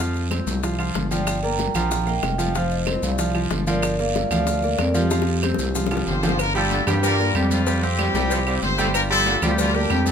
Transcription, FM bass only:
0.00 0.41 F2 medium
0.47 0.92 C2 medium
0.95 1.69 G1 medium
1.75 2.20 A#1 loud
2.23 2.97 F1 medium
3.03 3.48 C2 loud
3.51 4.25 G1 medium
4.31 4.76 D2 medium
4.79 5.54 F2 medium
5.59 6.04 C2 medium
6.07 6.82 G1 loud
6.87 7.32 G2 loud
7.35 8.09 F2 medium
8.14 8.59 C2 medium
8.63 9.37 G1 medium
9.42 9.87 D2 loud
9.90 10.12 F2 medium

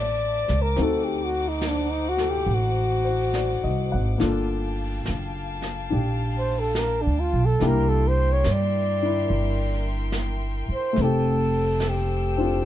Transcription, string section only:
0.00 0.74 C5 medium
0.00 0.74 E5 medium
0.00 0.74 A5 medium
0.00 4.17 D6 medium
0.78 4.18 D#4 medium
0.78 4.18 C5 medium
0.78 4.17 F#5 medium
4.17 7.56 F5 medium
4.17 12.65 G5 medium
4.17 7.56 A5 medium
7.58 10.93 A#4 medium
7.58 10.93 E5 medium
7.58 10.93 C6 medium
10.96 12.65 A4 medium
10.96 12.65 C5 medium
10.96 12.65 E6 medium

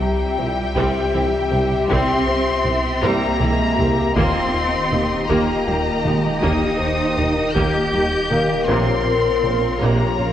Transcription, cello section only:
0.00 1.85 G3 medium
1.89 3.02 C4 loud
3.03 4.16 A#3 loud
4.16 5.27 C4 loud
5.28 6.39 A#3 medium
6.42 7.55 D#4 loud
7.54 8.65 G4 loud
8.67 9.79 C4 loud
9.81 10.33 A#3 medium

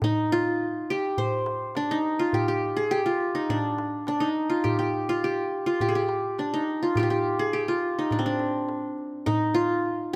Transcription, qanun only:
0.04 1.48 D#4 medium
0.32 1.67 F4 medium
0.90 2.16 G4 medium
1.18 2.24 C5 medium
1.77 1.97 D4 medium
1.91 3.34 D#4 medium
2.19 3.05 F4 medium
2.34 2.48 G4 medium
2.48 2.83 G4 medium
2.77 2.97 G#4 medium
2.91 4.17 G4 medium
3.06 4.40 F4 medium
3.35 3.56 D#4 medium
3.50 4.08 D4 medium
4.08 4.26 D4 medium
4.20 5.65 D#4 medium
4.50 5.09 F4 medium
4.64 4.78 G4 medium
4.79 5.24 G4 medium
5.09 5.66 F4 medium
5.24 5.81 G4 medium
5.66 6.82 F4 medium
5.81 5.95 G4 medium
5.89 6.01 G#4 medium
5.95 6.97 G4 medium
6.39 6.60 D4 medium
6.54 7.98 D#4 medium
6.83 6.99 F4 medium
6.97 7.68 F4 medium
6.97 7.02 G4 medium
7.03 7.10 G4 medium
7.10 7.45 G4 medium
7.39 7.59 G#4 medium
7.53 8.79 G4 medium
7.68 9.03 F4 medium
7.99 8.18 D#4 medium
8.12 8.25 D4 medium
8.19 9.79 C4 medium
8.26 9.32 D4 medium
9.26 10.16 D#4 medium
9.54 10.16 F4 medium

